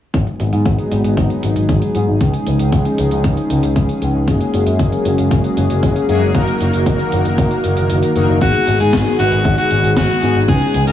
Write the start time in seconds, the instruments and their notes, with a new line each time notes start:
0.14 picked electric bass G#1, analog synth pad F#3 G#3 B3 D#4 G#4, kick, closed hi-hat
0.27 closed hi-hat
0.40 picked electric bass G#1, closed hi-hat
0.53 picked electric bass G#2, closed hi-hat
0.66 picked electric bass G#1, kick, closed hi-hat
0.79 closed hi-hat
0.91 picked electric bass G#1, closed hi-hat
1.04 picked electric bass G#1, closed hi-hat
1.17 picked electric bass G#1, kick, closed hi-hat
1.30 closed hi-hat
1.43 picked electric bass G#1, closed hi-hat
1.56 picked electric bass G#1, closed hi-hat
1.69 picked electric bass G#1, kick, closed hi-hat
1.82 closed hi-hat
1.95 picked electric bass G#2, closed hi-hat
2.08 picked electric bass G#1
2.21 picked electric bass C#2, analog synth pad F3 G#3 C#4 D#4, kick, closed hi-hat
2.34 closed hi-hat
2.46 picked electric bass C#2, closed hi-hat
2.59 picked electric bass C#2, closed hi-hat
2.72 picked electric bass C#2, kick, closed hi-hat
2.85 closed hi-hat
2.98 picked electric bass C#2, closed hi-hat
3.11 picked electric bass C#2, closed hi-hat
3.24 picked electric bass C#2, kick, closed hi-hat
3.37 closed hi-hat
3.50 picked electric bass C#2, closed hi-hat
3.63 picked electric bass C#2, closed hi-hat
3.76 picked electric bass C#2, kick, closed hi-hat
3.89 closed hi-hat
4.02 picked electric bass C#2, closed hi-hat
4.15 picked electric bass C#2
4.28 picked electric bass F#1, analog synth pad F#3 A#3, analog polysynth A#3 C#4 F#4 G#4, kick, closed hi-hat
4.41 closed hi-hat
4.54 picked electric bass F#1, closed hi-hat
4.66 picked electric bass F#2, closed hi-hat
4.79 picked electric bass F#1, kick, closed hi-hat
4.92 closed hi-hat
5.05 picked electric bass F#1, closed hi-hat
5.18 picked electric bass F#1, closed hi-hat
5.31 picked electric bass F#1, kick, closed hi-hat
5.44 closed hi-hat
5.57 picked electric bass F#1, closed hi-hat
5.70 picked electric bass F#1, closed hi-hat
5.83 picked electric bass F#1, kick, closed hi-hat
5.96 closed hi-hat
6.09 picked electric bass F#2, analog polysynth A#3 C#4 F#4 G#4, closed hi-hat
6.22 picked electric bass F#1
6.34 picked electric bass F#1, analog synth pad D#3 A#3 F#4 A#4, analog polysynth A#3 D#4 F#4 A#4, kick, closed hi-hat
6.48 closed hi-hat
6.61 picked electric bass F#1, closed hi-hat
6.73 picked electric bass F#1, closed hi-hat
6.86 picked electric bass F#1, kick, closed hi-hat
6.99 closed hi-hat
7.12 picked electric bass F#1, closed hi-hat
7.25 picked electric bass F#1, closed hi-hat
7.38 picked electric bass F#1, kick, closed hi-hat
7.51 closed hi-hat
7.64 picked electric bass F#1, closed hi-hat
7.77 picked electric bass F#1, closed hi-hat
7.90 picked electric bass F#1, closed hi-hat
8.03 closed hi-hat
8.16 picked electric bass F#1, analog polysynth A#3 D#4 F#4 A#4, closed hi-hat
8.28 picked electric bass F#1
8.41 picked electric bass G#1, analog synth pad D#3 G#3 B3 F#4 G#4, analog polysynth B3 D#4 F#4 G#4, alto saxophone F#4, kick, closed hi-hat
8.54 closed hi-hat
8.67 picked electric bass G#1, closed hi-hat
8.80 picked electric bass G#2, alto saxophone G#4, closed hi-hat
8.93 picked electric bass G#1, kick, snare, closed hi-hat
9.06 closed hi-hat
9.19 picked electric bass G#1, alto saxophone F#4, closed hi-hat
9.32 picked electric bass G#1, closed hi-hat
9.45 picked electric bass G#1, kick, closed hi-hat
9.58 alto saxophone F#4, closed hi-hat
9.71 picked electric bass G#1, closed hi-hat
9.84 picked electric bass G#1, closed hi-hat
9.97 picked electric bass G#1, alto saxophone F#4, kick, snare, closed hi-hat
10.10 closed hi-hat
10.22 picked electric bass G#2, analog polysynth B3 D#4 F#4 G#4, closed hi-hat
10.35 picked electric bass G#1
10.48 picked electric bass C#2, analog synth pad F3 C#4 D#4, analog polysynth C#4 D#4 F4 G#4, alto saxophone G#4, kick, closed hi-hat
10.61 closed hi-hat
10.74 picked electric bass C#2, closed hi-hat
10.87 picked electric bass C#2, alto saxophone A#4, closed hi-hat